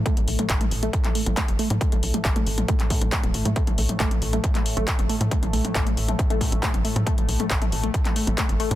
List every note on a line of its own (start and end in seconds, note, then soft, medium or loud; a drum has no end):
0.00 8.75 A2 medium
0.00 8.75 A3 medium
0.06 0.15 A3 loud
0.06 kick loud
0.06 closed hi-hat medium
0.17 0.26 A1 loud
0.17 closed hi-hat medium
0.17 mid tom medium
0.28 0.37 B1 loud
0.28 open hi-hat loud
0.39 0.45 A3 medium
0.39 closed hi-hat medium
0.39 mid tom medium
0.49 0.59 A1 medium
0.49 kick loud
0.49 clap loud
0.49 closed hi-hat loud
0.61 0.64 A3 medium
0.61 closed hi-hat medium
0.61 mid tom medium
0.71 0.89 A1 medium
0.71 open hi-hat loud
0.83 0.92 A3 loud
0.83 closed hi-hat medium
0.83 mid tom medium
0.93 kick loud
0.93 closed hi-hat medium
1.05 clap soft
1.05 closed hi-hat medium
1.05 mid tom medium
1.15 1.22 A3 medium
1.15 open hi-hat loud
1.26 1.35 A1 medium
1.26 closed hi-hat medium
1.26 mid tom medium
1.37 1.41 A3 medium
1.37 kick loud
1.37 clap loud
1.37 closed hi-hat loud
1.48 1.57 G1 medium
1.48 closed hi-hat medium
1.48 mid tom medium
1.59 1.68 A3 loud
1.59 open hi-hat loud
1.70 1.79 A2 medium
1.70 closed hi-hat medium
1.70 mid tom medium
1.81 kick loud
1.81 closed hi-hat medium
1.92 2.01 A1 loud
1.92 1.98 A3 medium
1.92 closed hi-hat medium
1.92 mid tom medium
2.03 2.12 B1 loud
2.03 open hi-hat loud
2.14 2.18 A3 medium
2.14 closed hi-hat medium
2.14 mid tom medium
2.25 2.34 A1 medium
2.25 kick loud
2.25 clap loud
2.25 closed hi-hat medium
2.36 2.45 A3 loud
2.36 closed hi-hat medium
2.36 mid tom medium
2.47 2.65 A1 medium
2.47 open hi-hat medium
2.58 closed hi-hat medium
2.58 mid tom medium
2.68 2.75 A3 medium
2.68 kick loud
2.68 closed hi-hat medium
2.80 clap soft
2.80 closed hi-hat medium
2.80 mid tom medium
2.90 2.94 A3 medium
2.90 kick medium
2.90 open hi-hat loud
3.02 3.10 A1 medium
3.02 closed hi-hat medium
3.02 mid tom medium
3.12 3.22 A3 loud
3.12 kick loud
3.12 clap loud
3.12 closed hi-hat medium
3.23 3.32 E1 medium
3.23 closed hi-hat medium
3.23 mid tom medium
3.34 3.43 A1 medium
3.34 open hi-hat loud
3.45 3.54 A2 medium
3.45 3.51 A3 medium
3.45 closed hi-hat medium
3.45 mid tom medium
3.56 3.62 A3 medium
3.56 kick loud
3.56 closed hi-hat medium
3.67 3.76 A1 loud
3.67 closed hi-hat medium
3.67 mid tom loud
3.78 3.87 B1 loud
3.78 3.82 A3 medium
3.78 open hi-hat loud
3.89 closed hi-hat medium
3.89 mid tom medium
4.00 4.09 A1 medium
4.00 4.09 A3 loud
4.00 kick loud
4.00 clap loud
4.00 closed hi-hat medium
4.11 closed hi-hat medium
4.11 mid tom medium
4.22 4.40 A1 loud
4.22 open hi-hat medium
4.33 4.39 A3 medium
4.33 closed hi-hat soft
4.33 mid tom medium
4.44 kick loud
4.44 closed hi-hat medium
4.55 4.59 A3 medium
4.55 clap soft
4.55 closed hi-hat soft
4.55 mid tom medium
4.66 open hi-hat loud
4.77 4.86 A1 medium
4.77 4.86 A3 loud
4.77 closed hi-hat soft
4.77 mid tom loud
4.88 kick loud
4.88 clap loud
4.88 closed hi-hat medium
4.99 5.07 G1 medium
4.99 closed hi-hat medium
4.99 mid tom medium
5.09 5.16 A3 medium
5.09 open hi-hat loud
5.21 5.29 A2 loud
5.21 closed hi-hat soft
5.21 mid tom medium
5.31 5.35 A3 medium
5.31 kick loud
5.31 closed hi-hat medium
5.43 5.51 A1 loud
5.43 closed hi-hat soft
5.43 mid tom loud
5.53 5.62 B1 loud
5.53 5.63 A3 loud
5.53 open hi-hat loud
5.65 closed hi-hat medium
5.65 mid tom loud
5.75 5.84 A1 medium
5.75 kick loud
5.75 clap loud
5.75 closed hi-hat medium
5.86 5.92 A3 medium
5.86 closed hi-hat soft
5.86 mid tom medium
5.97 6.15 A1 medium
5.97 open hi-hat medium
6.08 6.12 A3 medium
6.08 closed hi-hat medium
6.08 mid tom medium
6.19 kick loud
6.19 closed hi-hat medium
6.30 6.39 A3 loud
6.30 closed hi-hat medium
6.30 mid tom loud
6.41 kick medium
6.41 open hi-hat loud
6.52 6.61 A1 medium
6.52 closed hi-hat medium
6.52 mid tom medium
6.63 6.69 A3 medium
6.63 kick loud
6.63 clap loud
6.63 closed hi-hat medium
6.74 6.83 G1 medium
6.74 closed hi-hat soft
6.74 mid tom loud
6.85 6.88 A3 medium
6.85 open hi-hat medium
6.96 7.05 A2 loud
6.96 closed hi-hat medium
6.96 mid tom loud
7.07 7.16 A3 loud
7.07 kick loud
7.07 closed hi-hat medium
7.18 7.26 A1 loud
7.18 closed hi-hat medium
7.18 mid tom medium
7.28 7.38 B1 loud
7.28 open hi-hat loud
7.40 7.46 A3 medium
7.40 closed hi-hat medium
7.40 mid tom loud
7.50 7.59 A1 medium
7.50 kick loud
7.50 clap loud
7.50 closed hi-hat medium
7.62 7.65 A3 medium
7.62 closed hi-hat medium
7.62 mid tom loud
7.72 7.90 A1 medium
7.72 open hi-hat medium
7.83 7.92 A3 loud
7.83 closed hi-hat medium
7.83 mid tom medium
7.94 kick loud
7.94 closed hi-hat medium
8.05 clap soft
8.05 closed hi-hat medium
8.05 mid tom loud
8.16 8.22 A3 medium
8.16 open hi-hat loud
8.27 8.36 A1 medium
8.27 closed hi-hat medium
8.27 mid tom medium
8.38 8.42 A3 medium
8.38 kick loud
8.38 clap loud
8.38 closed hi-hat medium
8.49 8.58 G1 medium
8.49 closed hi-hat medium
8.49 mid tom medium
8.60 8.69 A3 loud
8.60 open hi-hat medium
8.71 8.75 A2 loud
8.71 closed hi-hat medium
8.71 mid tom loud